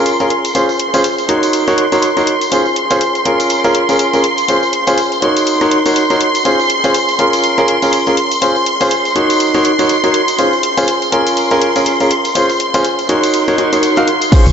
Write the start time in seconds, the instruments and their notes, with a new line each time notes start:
Already playing: grand piano C#4 F4 G#4 A#4, string machine C6
0.06 closed hi-hat, tambourine
0.20 grand piano C#4 F4 G#4 A#4, closed hi-hat, tambourine
0.30 closed hi-hat
0.45 closed hi-hat, tambourine
0.55 grand piano C#4 F4 G#4 C5, closed hi-hat, tambourine
0.69 tambourine
0.80 closed hi-hat
0.94 grand piano C#4 F4 G#4 C5, closed hi-hat, tambourine
1.04 closed hi-hat, tambourine
1.18 closed hi-hat, tambourine
1.29 grand piano D#4 F#4 A#4 C#5, closed hi-hat
1.43 closed hi-hat, tambourine
1.53 closed hi-hat, tambourine
1.68 grand piano D#4 F#4 A#4 C#5, closed hi-hat, tambourine
1.78 closed hi-hat
1.92 grand piano D#4 F#4 A#4 C#5, closed hi-hat, tambourine
2.02 closed hi-hat, tambourine
2.17 grand piano D#4 F#4 A#4 C#5, closed hi-hat, tambourine
2.27 closed hi-hat
2.41 closed hi-hat, tambourine
2.52 grand piano C#4 F4 G#4 C5, closed hi-hat, tambourine
2.65 tambourine
2.76 closed hi-hat
2.90 grand piano C#4 F4 G#4 C5, closed hi-hat, tambourine
3.01 closed hi-hat, tambourine
3.15 closed hi-hat, tambourine
3.25 grand piano C#4 F4 G#4 A#4, closed hi-hat
3.40 closed hi-hat, tambourine
3.50 closed hi-hat, tambourine
3.64 grand piano C#4 F4 G#4 A#4, closed hi-hat, tambourine
3.75 closed hi-hat
3.89 grand piano C#4 F4 G#4 A#4, closed hi-hat, tambourine
3.99 closed hi-hat, tambourine
4.14 grand piano C#4 F4 G#4 A#4, closed hi-hat, tambourine
4.24 closed hi-hat
4.38 closed hi-hat, tambourine
4.48 grand piano C#4 F4 G#4 C5, closed hi-hat, tambourine
4.63 tambourine
4.73 closed hi-hat
4.87 grand piano C#4 F4 G#4 C5, closed hi-hat, tambourine
4.98 closed hi-hat, tambourine
5.12 closed hi-hat, tambourine
5.22 grand piano D#4 F#4 A#4 C#5, closed hi-hat
5.36 closed hi-hat, tambourine
5.47 closed hi-hat, tambourine
5.61 grand piano D#4 F#4 A#4 C#5, closed hi-hat, tambourine
5.71 closed hi-hat
5.86 grand piano D#4 F#4 A#4 C#5, closed hi-hat, tambourine
5.96 closed hi-hat, tambourine
6.10 grand piano D#4 F#4 A#4 C#5, closed hi-hat, tambourine
6.21 closed hi-hat
6.35 closed hi-hat, tambourine
6.45 grand piano C#4 F4 G#4 C5, closed hi-hat, tambourine
6.60 tambourine
6.70 closed hi-hat
6.84 grand piano C#4 F4 G#4 C5, closed hi-hat, tambourine
6.94 closed hi-hat, tambourine
7.08 closed hi-hat, tambourine
7.19 grand piano C#4 F4 G#4 A#4, closed hi-hat
7.33 closed hi-hat, tambourine
7.43 closed hi-hat, tambourine
7.58 grand piano C#4 F4 G#4 A#4, closed hi-hat, tambourine
7.68 closed hi-hat
7.82 grand piano C#4 F4 G#4 A#4, closed hi-hat, tambourine
7.93 closed hi-hat, tambourine
8.06 grand piano C#4 F4 G#4 A#4, closed hi-hat, tambourine
8.17 closed hi-hat
8.31 closed hi-hat, tambourine
8.42 grand piano C#4 F4 G#4 C5, closed hi-hat, tambourine
8.56 tambourine
8.66 closed hi-hat
8.81 grand piano C#4 F4 G#4 C5, closed hi-hat, tambourine
8.90 closed hi-hat, tambourine
9.05 closed hi-hat, tambourine
9.16 grand piano D#4 F#4 A#4 C#5, closed hi-hat
9.30 closed hi-hat, tambourine
9.40 closed hi-hat, tambourine
9.54 grand piano D#4 F#4 A#4 C#5, closed hi-hat, tambourine
9.65 closed hi-hat
9.79 grand piano D#4 F#4 A#4 C#5, closed hi-hat, tambourine
9.89 closed hi-hat, tambourine
10.04 grand piano D#4 F#4 A#4 C#5, closed hi-hat, tambourine
10.14 closed hi-hat
10.28 closed hi-hat, tambourine
10.39 grand piano C#4 F4 G#4 C5, closed hi-hat, tambourine
10.53 tambourine
10.63 closed hi-hat
10.77 grand piano C#4 F4 G#4 C5, closed hi-hat, tambourine
10.87 closed hi-hat, tambourine
11.02 closed hi-hat, tambourine
11.12 grand piano C#4 F4 G#4 A#4, closed hi-hat
11.27 closed hi-hat, tambourine
11.37 closed hi-hat, tambourine
11.50 grand piano C#4 F4 G#4 A#4, closed hi-hat, tambourine
11.62 closed hi-hat
11.76 grand piano C#4 F4 G#4 A#4, closed hi-hat, tambourine
11.86 closed hi-hat, tambourine
12.00 grand piano C#4 F4 G#4 A#4, closed hi-hat, tambourine
12.11 closed hi-hat
12.25 closed hi-hat, tambourine
12.35 grand piano C#4 F4 G#4 C5, closed hi-hat, tambourine
12.49 closed hi-hat, tambourine
12.60 closed hi-hat
12.74 grand piano C#4 F4 G#4 C5, closed hi-hat, tambourine
12.84 closed hi-hat, tambourine
12.99 closed hi-hat, tambourine
13.09 grand piano D#4 F#4 A#4 C#5, closed hi-hat
13.23 closed hi-hat, tambourine
13.34 closed hi-hat, tambourine
13.48 grand piano D#4 F#4 A#4 C#5, closed hi-hat, tambourine
13.58 grand piano D#4 F#4 A#4 C#5, closed hi-hat
13.73 grand piano D#4 F#4 A#4 C#5, closed hi-hat, tambourine
13.83 closed hi-hat, tambourine
13.96 grand piano D#4 F#4 A#4 F5, closed hi-hat, tambourine
14.08 closed hi-hat
14.21 closed hi-hat, tambourine
14.32 grand piano C#4 F4 G#4 C5, string machine C#6, kick, closed hi-hat, crash, tambourine
14.46 analog synth bass C#2, closed hi-hat, tambourine